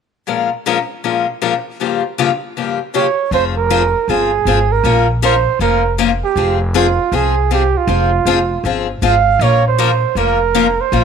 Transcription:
0.27 steel-string acoustic guitar A#2 F3 G#3 C#4 F4 A#4
0.66 steel-string acoustic guitar A#2 F3 G#3 C#4 F4 A#4
1.04 steel-string acoustic guitar A#2 F3 G#3 C#4 F4 A#4
1.42 steel-string acoustic guitar A#2 F3 G#3 C#4 F4 A#4
1.80 steel-string acoustic guitar G2 C#3 F3 A#3 F4 G4
2.18 steel-string acoustic guitar G2 C#3 F3 A#3 F4 G4
2.57 steel-string acoustic guitar G2 C#3 F3 A#3 F4 G4
2.94 steel-string acoustic guitar G2 C#3 F3 A#3 F4 G4, flugelhorn C#5
3.31 upright bass F1, steel-string acoustic guitar F3 C4 F4 G#4, flugelhorn C5
3.57 flugelhorn A#4
3.70 steel-string acoustic guitar F3 C4 F4 G#4
4.08 upright bass G1, steel-string acoustic guitar F3 C4 F4 G#4, flugelhorn G#4
4.45 upright bass G#1, steel-string acoustic guitar F3 C4 F4 G#4
4.72 flugelhorn A#4
4.84 upright bass A#1, steel-string acoustic guitar F3 A#3 C#4 F4 A#4
5.22 steel-string acoustic guitar F3 A#3 C#4 F4 A#4, flugelhorn C5
5.59 upright bass F1, steel-string acoustic guitar F3 A#3 C#4 F4 A#4, flugelhorn A#4
5.98 steel-string acoustic guitar F3 A#3 C#4 F4 A#4
6.24 flugelhorn G4
6.36 upright bass F1, steel-string acoustic guitar F3 C4 F4 G#4
6.74 steel-string acoustic guitar F3 C4 F4 G#4, flugelhorn F4
7.12 upright bass C2, steel-string acoustic guitar F3 C4 F4 G#4, flugelhorn G#4
7.51 steel-string acoustic guitar F3 C4 F4 G#4, flugelhorn G4
7.77 flugelhorn F4
7.87 upright bass F1, steel-string acoustic guitar F3 C4 F4 G#4
8.25 upright bass F1, steel-string acoustic guitar F3 C4 F4 G#4
8.64 upright bass G1, steel-string acoustic guitar F3 C4 F4 G#4
9.02 upright bass G#1, steel-string acoustic guitar F3 C4 F4 G#4, flugelhorn F5
9.39 upright bass A#1, steel-string acoustic guitar F3 A#3 C#4 F4 A#4, flugelhorn C#5
9.68 flugelhorn C5
9.78 steel-string acoustic guitar F3 A#3 C#4 F4 A#4
10.15 upright bass F1, steel-string acoustic guitar F3 A#3 C#4 F4 A#4, flugelhorn A#4
10.55 steel-string acoustic guitar F3 A#3 C#4 F4 A#4
10.81 flugelhorn C5
10.92 upright bass A#1, steel-string acoustic guitar F3 A#3 C#4 F4 A#4

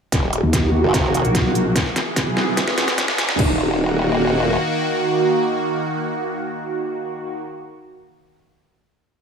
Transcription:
0.12 wobble bass D#1, supersaw synth D#3 A#3 F#4, kick, snare, closed hi-hat, riser
0.33 closed hi-hat
0.43 wobble bass D#2
0.53 kick, snare, closed hi-hat
0.84 wobble bass F#1
0.94 kick, snare, closed hi-hat
1.14 closed hi-hat
1.25 wobble bass A#1, closed hi-hat
1.35 kick, snare, closed hi-hat
1.55 closed hi-hat
1.76 supersaw synth E3 B3 G#4, kick, snare, closed hi-hat
1.96 snare, closed hi-hat
2.16 kick, snare, closed hi-hat
2.27 wobble bass B1
2.37 snare
2.57 kick, snare, closed hi-hat
2.68 wobble bass E1, snare
2.78 snare, closed hi-hat
2.88 snare, closed hi-hat
2.98 kick, snare, closed hi-hat
3.08 snare
3.18 snare, closed hi-hat
3.29 snare
3.39 wobble bass D#1, supersaw synth D#3 A#3 F#4, kick, crash

